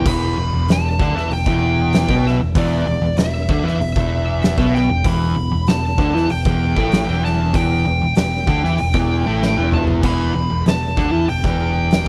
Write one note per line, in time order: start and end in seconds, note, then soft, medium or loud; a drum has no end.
0.06 0.35 E1 medium
0.06 0.36 E2 medium
0.06 0.36 E3 loud
0.06 0.71 B5 loud
0.06 kick loud
0.06 crash loud
0.37 0.52 E1 medium
0.37 0.52 E2 medium
0.52 0.67 E1 medium
0.52 0.67 E2 medium
0.68 0.98 E1 medium
0.68 0.93 E2 medium
0.68 1.33 A5 loud
0.68 snare loud
0.68 open hi-hat medium
0.99 1.14 D2 loud
0.99 1.14 D3 loud
0.99 1.15 D4 loud
0.99 kick loud
1.15 1.29 E2 loud
1.15 1.30 E3 medium
1.15 1.30 E4 medium
1.15 snare soft
1.30 1.45 E1 medium
1.30 1.46 E2 medium
1.30 2.28 G5 loud
1.30 open hi-hat medium
1.46 2.04 E1 medium
1.46 2.08 E2 loud
1.46 2.08 E3 loud
1.46 kick medium
1.93 snare loud
1.93 open hi-hat medium
2.09 2.38 B1 medium
2.09 2.39 B2 medium
2.09 2.40 B3 loud
2.09 kick loud
2.27 2.35 E5 loud
2.27 snare soft
2.39 2.54 E1 medium
2.39 2.54 E2 medium
2.55 2.84 E1 medium
2.55 2.85 E2 loud
2.55 2.86 E3 loud
2.55 3.15 D5 loud
2.55 kick loud
2.55 open hi-hat medium
2.86 3.01 E1 medium
2.86 3.01 E2 medium
3.02 3.16 E1 medium
3.02 3.17 E2 medium
3.17 3.46 E1 medium
3.17 3.43 E2 medium
3.17 4.78 E5 loud
3.17 snare loud
3.17 open hi-hat medium
3.49 3.63 D2 loud
3.49 3.63 D3 medium
3.49 3.64 D4 medium
3.49 kick loud
3.64 3.78 E2 loud
3.64 3.79 E3 loud
3.64 3.79 E4 loud
3.64 snare soft
3.79 3.94 E1 medium
3.79 3.95 E2 medium
3.79 open hi-hat medium
3.96 4.54 E1 loud
3.96 4.57 E2 medium
3.96 4.58 E3 loud
3.96 kick loud
4.42 snare loud
4.42 open hi-hat medium
4.57 4.87 B1 loud
4.57 4.88 B2 medium
4.57 4.88 B3 loud
4.57 kick loud
4.75 5.06 G5 loud
4.75 snare soft
4.89 5.03 E1 medium
4.89 5.03 E2 medium
5.04 5.33 E1 medium
5.04 5.35 E2 medium
5.04 5.35 E3 loud
5.04 5.69 B5 loud
5.04 kick loud
5.04 open hi-hat medium
5.36 5.51 E1 medium
5.36 5.50 E2 medium
5.52 5.66 E1 medium
5.52 5.67 E2 medium
5.67 5.97 E1 medium
5.67 5.92 E2 medium
5.67 6.31 A5 loud
5.67 snare loud
5.67 open hi-hat medium
5.98 6.13 D2 loud
5.98 6.13 D3 medium
5.98 6.13 D4 loud
5.98 kick loud
6.14 6.28 E2 loud
6.14 6.29 E3 medium
6.14 6.29 E4 loud
6.14 snare soft
6.29 6.44 E1 medium
6.29 6.45 E2 medium
6.29 7.24 G5 medium
6.29 open hi-hat medium
6.45 6.74 E1 loud
6.45 6.75 E2 medium
6.45 6.76 E3 medium
6.45 kick loud
6.77 7.05 A1 loud
6.77 7.06 A2 medium
6.77 7.07 A3 loud
6.77 kick loud
6.92 snare loud
6.92 open hi-hat medium
7.07 7.51 E1 loud
7.07 7.52 E2 medium
7.07 7.53 E3 loud
7.25 7.56 A5 loud
7.25 snare soft
7.54 7.83 E1 medium
7.54 7.84 E2 loud
7.54 7.84 E3 loud
7.54 8.13 G5 loud
7.54 kick loud
7.54 open hi-hat medium
7.85 8.00 E1 medium
7.85 8.01 E2 medium
8.02 8.16 E1 medium
8.02 8.16 E2 medium
8.15 8.45 E1 medium
8.15 8.41 E2 medium
8.15 9.69 G5 loud
8.15 snare loud
8.15 open hi-hat medium
8.47 8.62 D2 loud
8.47 8.62 D3 medium
8.47 8.62 D4 loud
8.47 kick loud
8.64 8.78 E2 loud
8.64 8.78 E3 medium
8.64 8.79 E4 medium
8.64 snare soft
8.78 8.93 E1 medium
8.78 8.93 E2 medium
8.78 open hi-hat medium
8.94 9.23 E1 medium
8.94 9.24 E2 medium
8.94 9.25 E3 loud
8.94 kick loud
9.26 9.55 A1 loud
9.26 9.56 A2 medium
9.26 9.56 A3 loud
9.43 snare medium
9.56 10.00 E1 medium
9.56 10.01 E2 medium
9.56 10.03 E3 medium
9.72 9.82 A5 loud
9.72 mid tom loud
9.87 floor tom medium
10.03 10.32 E1 medium
10.03 10.33 E2 medium
10.03 10.34 E3 loud
10.03 10.63 B5 loud
10.03 kick loud
10.03 crash loud
10.35 10.50 E1 medium
10.35 10.49 E2 medium
10.50 10.65 E1 medium
10.50 10.65 E2 medium
10.66 10.95 E1 medium
10.66 10.91 E2 medium
10.66 11.29 A5 medium
10.66 snare loud
10.66 open hi-hat medium
10.97 11.11 D2 loud
10.97 11.11 D3 loud
10.97 11.12 D4 loud
10.97 kick loud
11.12 11.27 E2 loud
11.12 11.27 E3 medium
11.12 11.27 E4 loud
11.28 11.43 E1 medium
11.28 11.42 E2 medium
11.28 12.08 G5 medium
11.28 open hi-hat medium
11.44 12.02 E1 loud
11.44 12.05 E2 medium
11.44 12.05 E3 medium
11.44 kick loud
11.91 snare loud
11.91 open hi-hat medium